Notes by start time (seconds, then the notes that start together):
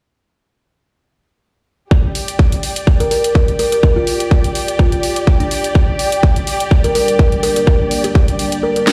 1.91 G4, kick
2.11 D5
2.15 open hi-hat
2.28 closed hi-hat
2.39 kick
2.52 closed hi-hat
2.63 open hi-hat
2.76 closed hi-hat
2.87 kick
3.00 A#4, closed hi-hat
3.11 A#4, open hi-hat
3.24 closed hi-hat
3.35 kick
3.48 closed hi-hat
3.59 A#4, open hi-hat
3.72 A#4, closed hi-hat
3.83 kick
3.96 F4
4.07 open hi-hat
4.20 closed hi-hat
4.31 kick
4.44 closed hi-hat
4.55 open hi-hat
4.68 closed hi-hat
4.79 F4, kick
4.92 closed hi-hat
5.03 open hi-hat
5.16 closed hi-hat
5.27 kick
5.40 D4, closed hi-hat
5.51 open hi-hat
5.64 closed hi-hat
5.75 G3 A#3 D4 A4, kick
5.99 open hi-hat
6.12 closed hi-hat
6.23 kick
6.36 closed hi-hat
6.47 open hi-hat
6.60 closed hi-hat
6.71 kick
6.84 A#4, closed hi-hat
6.95 A#4, open hi-hat
7.08 closed hi-hat
7.19 kick
7.32 closed hi-hat
7.43 A#4, open hi-hat
7.56 A#4, closed hi-hat
7.67 A#4, kick
7.91 open hi-hat
8.04 G4, closed hi-hat
8.15 kick
8.28 closed hi-hat
8.39 open hi-hat
8.52 closed hi-hat
8.63 A#4
8.76 A#4, closed hi-hat
8.87 snare, open hi-hat